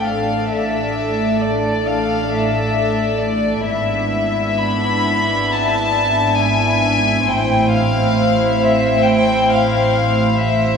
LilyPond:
<<
  \new Staff \with { instrumentName = "Violin section" } { \time 4/4 \key a \minor \tempo 4 = 67 f''8 e''4 d''8 f''8 e''4 d''8 | e''4 b''4 a''4 gis''4 | g''8 f''4 e''8 g''8 f''4 e''8 | }
  \new Staff \with { instrumentName = "Violin section" } { \time 4/4 \key a \minor <a' d''>1 | <e' e''>1 | <e' c''>1 | }
  \new Staff \with { instrumentName = "Viola section" } { \time 4/4 \key a \minor <a d'>1 | <b d'>1 | c'1 | }
  \new Staff \with { instrumentName = "Cello section" } { \clef bass \time 4/4 \key a \minor a,1 | gis,1 | a,1 | }
  \new Staff \with { instrumentName = "Double bass section" } { \clef bass \time 4/4 \key a \minor a,,1 | gis,,1 | a,,1 | }
>>